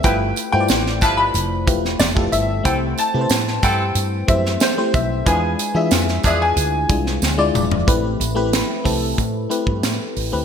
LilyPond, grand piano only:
\new Staff \with { instrumentName = "Grand piano" } { \time 4/4 \key g \major \tempo 4 = 92 g''8. g''8. a''16 b''4~ b''16 d''8 e''8 | g''8 a''4 g''4 e''8 c''8 e''8 | gis''8. e''8. e''16 gis''4.~ gis''16 r8 | r1 | }